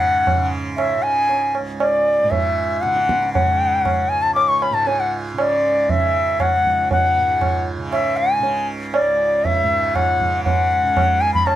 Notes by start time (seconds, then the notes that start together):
Already playing: C#2 G#2 C#3 F#5
0.27 tabla na, tabla ge
0.37 C#3
0.77 E5, tabla na
0.98 C#3
1.03 G#5
1.29 tabla tin
1.55 tabla na
1.60 C#2
1.80 D5, tabla na
2.23 G#2
2.31 E5, tabla tin, tabla ge
2.81 C#3 F#5, tabla te
2.96 tabla te
3.09 tabla ke
3.22 tabla te
3.33 F#5, tabla tin, tabla ge
3.46 C#3
3.85 tabla na, tabla ge
4.09 C#2 G#5
4.22 A5
4.35 D6, tabla na
4.48 C#6
4.59 B5 C#6, tabla na
4.71 G#2 A5
4.87 G#5, tabla tin
5.00 F#5
5.33 C#3
5.38 D5, tabla na
5.89 E5, tabla tin, tabla ge
5.94 C#3
6.40 F#5, tabla na, tabla ge
6.55 C#2
6.66 tabla ge
6.91 F#5, tabla tin, tabla ge
7.17 G#2
7.41 tabla na, tabla ge
7.78 C#3
7.92 E5, tabla na
8.17 G#5
8.39 C#3
8.43 tabla tin
8.93 D5, tabla na
9.01 C#2
9.45 E5, tabla tin, tabla ge
9.63 G#2
9.95 F#5, tabla na, tabla ge
10.21 C#3, tabla ge
10.44 F#5, tabla tin, tabla ge
10.84 C#3
10.97 tabla na, tabla ge
11.21 G#5, tabla te
11.34 B5, tabla ge
11.45 C#2 A5, tabla na